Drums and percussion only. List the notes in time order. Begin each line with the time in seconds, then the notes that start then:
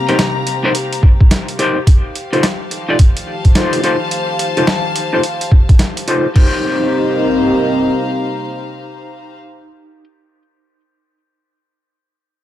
0.09 closed hi-hat
0.19 snare, closed hi-hat
0.47 closed hi-hat
0.75 closed hi-hat
0.93 closed hi-hat
1.03 kick
1.21 kick
1.31 snare, closed hi-hat
1.48 closed hi-hat
1.59 closed hi-hat
1.87 kick, closed hi-hat
2.15 closed hi-hat
2.33 closed hi-hat
2.43 snare, closed hi-hat
2.71 closed hi-hat
2.99 kick, closed hi-hat
3.17 closed hi-hat
3.45 kick, closed hi-hat
3.55 snare, closed hi-hat
3.73 closed hi-hat
3.84 closed hi-hat
4.11 closed hi-hat
4.39 closed hi-hat
4.57 closed hi-hat
4.67 snare
4.96 closed hi-hat
5.23 closed hi-hat
5.41 closed hi-hat
5.52 kick
5.69 kick, closed hi-hat
5.79 snare, closed hi-hat
5.97 closed hi-hat
6.08 closed hi-hat
6.36 kick, crash